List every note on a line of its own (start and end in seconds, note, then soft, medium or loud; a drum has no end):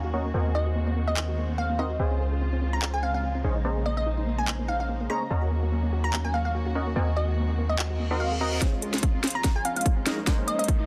0.00 0.32 D#2 medium
0.00 0.32 D#3 medium
0.00 0.32 F#3 medium
0.00 1.96 A#3 medium
0.00 0.11 C#4 medium
0.00 0.32 C#4 medium
0.00 0.11 F#4 medium
0.00 1.96 F#4 medium
0.00 0.11 A#4 medium
0.00 0.11 D#5 medium
0.00 0.11 A#5 medium
0.04 0.09 F#4 medium
0.13 0.19 A#3 medium
0.13 0.26 C#4 medium
0.13 0.26 F#4 medium
0.13 0.26 A#4 medium
0.13 0.26 D#5 medium
0.13 0.26 C#6 medium
0.25 0.29 A#3 medium
0.34 1.98 D#2 medium
0.34 1.98 D#3 medium
0.34 1.98 G#3 medium
0.34 0.40 A#3 medium
0.34 1.77 C4 medium
0.34 1.77 F#4 medium
0.34 1.77 A#4 medium
0.34 3.41 C5 medium
0.34 1.77 D#5 medium
0.34 1.77 G#5 medium
0.46 0.52 A#3 medium
0.55 0.60 D#4 medium
0.55 0.64 D#5 medium
0.66 0.71 F#4 medium
0.76 0.81 A#3 medium
0.87 0.91 A#3 medium
0.96 1.02 A#3 medium
1.08 1.14 A#3 medium
1.08 1.37 D#5 medium
1.17 1.22 D#4 medium
1.17 clap medium
1.28 1.33 F#4 medium
1.38 1.43 A#3 medium
1.49 1.53 A#3 medium
1.58 1.64 A#3 medium
1.58 1.72 F5 loud
1.70 1.76 A#3 medium
1.79 1.91 C4 medium
1.79 1.84 D#4 medium
1.79 1.91 F#4 medium
1.79 1.91 A#4 medium
1.79 2.04 D#5 medium
1.79 1.91 D#5 medium
1.79 1.91 C6 medium
1.90 1.95 F#4 medium
1.99 3.42 C#2 medium
1.99 5.27 C#3 medium
1.99 3.43 F3 medium
1.99 5.27 G#3 medium
1.99 2.05 C4 medium
1.99 3.42 C#4 medium
1.99 3.43 F4 medium
1.99 3.42 G#4 medium
1.99 3.42 C5 medium
1.99 3.42 F5 medium
1.99 3.42 G#5 medium
2.11 2.18 C4 medium
2.20 2.26 G#4 medium
2.32 2.36 G#4 medium
2.41 2.46 C4 medium
2.53 2.57 C4 medium
2.62 2.67 C4 medium
2.73 2.80 C4 medium
2.73 2.85 A#5 medium
2.82 2.88 G#4 medium
2.82 clap medium
2.94 2.98 G#4 medium
2.94 3.01 G#5 medium
3.03 3.08 C4 medium
3.03 3.10 F5 medium
3.14 3.19 C4 medium
3.14 3.20 F5 medium
3.23 3.29 C4 medium
3.35 3.42 C4 medium
3.44 5.08 A#1 medium
3.44 8.57 A#3 medium
3.44 3.56 C#4 medium
3.44 5.29 D#4 medium
3.44 3.50 D#4 medium
3.44 3.56 G#4 medium
3.44 5.29 C5 medium
3.44 3.56 C5 medium
3.44 3.56 D#5 medium
3.44 3.56 C#6 medium
3.56 3.60 D#4 medium
3.65 3.70 A#3 medium
3.65 5.07 C#4 medium
3.65 5.08 G#4 medium
3.65 5.07 C5 medium
3.65 5.07 D#5 medium
3.65 5.08 A#5 medium
3.76 3.81 A#3 medium
3.85 3.91 A#3 medium
3.85 3.95 D#5 medium
3.97 4.04 A#3 medium
3.97 4.09 D#5 medium
4.06 4.12 D#4 medium
4.18 4.22 D#4 medium
4.27 4.32 A#3 medium
4.38 4.43 A#3 medium
4.38 4.50 G#5 medium
4.47 4.53 A#3 medium
4.47 clap medium
4.59 4.66 A#3 medium
4.68 4.74 D#4 medium
4.68 4.76 F5 medium
4.80 4.84 D#4 medium
4.80 4.86 F5 medium
4.89 4.94 A#3 medium
5.00 5.05 A#3 medium
5.10 5.15 A#3 medium
5.10 5.22 C#4 medium
5.10 5.22 G#4 medium
5.10 5.22 C5 medium
5.10 5.22 D#5 medium
5.10 5.35 A#5 medium
5.10 5.22 C#6 medium
5.21 5.28 A#3 medium
5.30 6.94 D#2 medium
5.30 8.58 D#3 medium
5.30 6.94 F#3 medium
5.30 6.73 C#4 medium
5.30 6.94 C#4 medium
5.30 6.73 F#4 medium
5.30 5.36 F#4 medium
5.30 8.58 F#4 medium
5.30 6.73 A#4 medium
5.30 6.73 D#5 medium
5.30 6.73 A#5 medium
5.42 5.46 F#4 medium
5.51 5.57 A#3 medium
5.63 5.67 A#3 medium
5.72 5.77 A#3 medium
5.83 5.90 A#3 medium
5.93 5.98 F#4 medium
6.04 6.08 F#4 medium
6.04 6.16 A#5 medium
6.13 6.19 A#3 medium
6.13 clap medium
6.25 6.29 A#3 medium
6.25 6.32 G#5 medium
6.34 6.39 A#3 medium
6.34 6.41 F5 medium
6.45 6.52 A#3 medium
6.45 6.51 F5 medium
6.55 6.60 F#4 medium
6.66 6.70 F#4 medium
6.75 6.81 A#3 medium
6.75 6.88 C#4 medium
6.75 6.88 F#4 medium
6.75 6.88 A#4 medium
6.75 6.88 D#5 medium
6.75 6.87 C#6 medium
6.87 6.91 A#3 medium
6.96 8.60 D#2 medium
6.96 8.60 G#3 medium
6.96 7.01 A#3 medium
6.96 8.09 C4 medium
6.96 8.60 C4 medium
6.96 8.09 F#4 medium
6.96 8.09 A#4 medium
6.96 8.09 D#5 medium
6.96 8.09 G#5 medium
7.08 7.14 A#3 medium
7.17 7.22 F#4 medium
7.17 7.26 D#5 medium
7.28 7.33 F#4 medium
7.37 7.43 A#3 medium
7.49 7.53 A#3 medium
7.58 7.64 A#3 medium
7.69 7.76 A#3 medium
7.69 7.99 D#5 medium
7.79 7.84 F#4 medium
7.79 clap medium
7.79 reverse cymbal medium
7.90 7.95 F#4 medium
8.00 8.08 A#3 medium
8.11 8.39 C4 loud
8.11 8.15 D#4 medium
8.11 8.39 F#4 medium
8.11 8.39 A#4 medium
8.11 8.39 D#5 medium
8.11 8.39 C6 loud
8.20 8.23 F#4 medium
8.20 8.33 F5 medium
8.31 8.38 G#4 medium
8.41 8.59 C4 medium
8.41 8.59 F#4 medium
8.41 8.46 F#4 medium
8.41 8.59 A#4 medium
8.41 8.59 D#5 medium
8.41 8.62 D#5 medium
8.41 8.59 A#5 loud
8.52 8.57 F#4 medium
8.61 10.05 C#2 medium
8.61 10.05 F3 medium
8.61 10.04 G#3 medium
8.61 10.86 G#3 medium
8.61 8.67 C4 medium
8.61 10.04 C#4 medium
8.61 10.86 C#4 medium
8.61 10.05 F4 medium
8.61 10.04 C#5 medium
8.61 kick medium
8.61 snare soft
8.61 closed hi-hat medium
8.61 riser medium
8.73 8.80 C4 medium
8.82 8.88 G#4 medium
8.82 closed hi-hat medium
8.94 8.98 G#4 medium
8.94 snare soft
8.94 closed hi-hat soft
8.98 closed hi-hat medium
9.03 9.08 C4 medium
9.03 kick loud
9.03 closed hi-hat medium
9.14 9.19 C4 medium
9.23 9.29 C4 medium
9.23 snare medium
9.23 closed hi-hat medium
9.27 closed hi-hat medium
9.30 closed hi-hat medium
9.35 9.41 C4 medium
9.35 9.47 A#5 medium
9.44 9.50 G#4 medium
9.44 kick loud
9.44 snare medium
9.44 closed hi-hat medium
9.55 9.60 G#4 medium
9.55 9.63 G#5 medium
9.65 9.70 C4 medium
9.65 9.72 F5 medium
9.65 closed hi-hat medium
9.76 9.81 C4 medium
9.76 9.82 F5 medium
9.76 closed hi-hat soft
9.81 closed hi-hat medium
9.85 9.91 C4 medium
9.85 kick loud
9.85 closed hi-hat medium
9.97 10.04 C4 medium
10.06 10.61 A#1 loud
10.06 10.19 G#3 medium
10.06 10.86 A#3 medium
10.06 10.19 C#4 medium
10.06 10.12 D#4 medium
10.06 10.19 D#4 medium
10.06 10.86 D#4 medium
10.06 10.19 A#4 medium
10.06 10.86 C5 medium
10.06 10.19 D#5 medium
10.06 snare medium
10.06 closed hi-hat medium
10.18 10.22 D#4 medium
10.27 10.86 G#3 medium
10.27 10.32 A#3 medium
10.27 10.86 C#4 medium
10.27 10.86 D#4 medium
10.27 10.86 A#4 medium
10.27 10.86 C5 medium
10.27 kick loud
10.27 snare medium
10.27 closed hi-hat medium
10.38 10.43 A#3 medium
10.48 10.53 A#3 medium
10.48 10.57 D#5 medium
10.48 closed hi-hat medium
10.59 10.86 C2 medium
10.59 10.66 A#3 medium
10.59 10.71 D#5 medium
10.59 closed hi-hat soft
10.64 closed hi-hat medium
10.68 10.74 D#4 medium
10.68 kick loud
10.68 closed hi-hat medium
10.80 10.84 D#4 medium